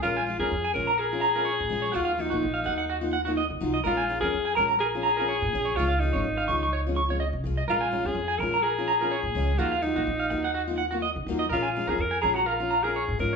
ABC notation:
X:1
M:4/4
L:1/16
Q:"Swing 16ths" 1/4=126
K:Bbm
V:1 name="Clean electric guitar"
B a z B z a z b B z b B d z2 d | G f z G z f g g G z g G e z2 e | B a z B z a b b B z b B d z2 d | d f z d z f d' d' d z d' d e z2 e |
B a z3 a z b B z b B d z3 | G f z G z f z g G z g G e z2 e | B a z B z a b b B z b B d z2 d |]
V:2 name="Alto saxophone"
F3 A3 B2 A8 | F2 E8 z6 | F3 A3 B2 A8 | F2 E8 z6 |
F3 A3 B2 A8 | F2 E8 z6 | F3 A B2 A G F3 A3 B2 |]
V:3 name="Steel-string acoustic guitar"
[A,DF] z [A,F] [DF] z2 [A,DF] z2 [DF] z [DF] z2 [A,DF] z | [G,B,EF] z [G,B,EF] [B,EF] z2 [G,B,E] z2 [B,EF] z [B,EF] z2 [G,EF] z | [A,DF] z [A,DF] [DF] z2 [A,DF] z2 [DF] z [DF] z2 D z | [E,A,DF] z [E,A,DF] [A,DF] z2 [E,A,DF] z2 [A,DF] z [A,DF] z2 [A,F] z |
[A,D] z [A,DF] [DF] z2 [A,DF] z2 [DF] z [DF] z2 [A,DF] z | [G,B,EF] z [G,B,EF] [B,EF] z2 [G,B,EF] z2 [B,EF] z [B,F] z2 [G,B,EF] z | [A,DF] z [A,DF] [DF] z2 [A,DF] z2 [DF] z [DF] z2 [A,DF] z |]
V:4 name="Upright bass" clef=bass
B,,,3 F,, F,,2 B,,,6- B,,, B,, B,,,2 | E,,3 B,,, B,,,2 E,,6- E,, E, C,,2 | B,,,3 F,, F,,2 B,,,6- B,,, B,, B,,,2 | D,,3 A,,, A,,,2 D,,6- D,, D, C,,2 |
B,,,3 F,, F,,2 B,,,6- B,,, B,, D,,2 | E,,3 B,,, B,,,2 E,,6- E,, E, E,,2 | B,,,3 F,, F,,2 B,,,6- B,,, B,, A,,2 |]